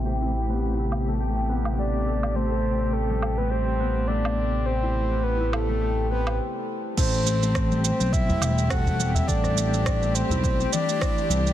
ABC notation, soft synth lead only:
X:1
M:4/4
L:1/16
Q:"Swing 16ths" 1/4=104
K:Am
V:1 name="Soft synth lead"
z12 d4 | c4 A3 B c4 d4 | c4 B2 A4 B2 z4 | c6 c2 e4 ^f3 e |
d6 c2 c2 d6 |]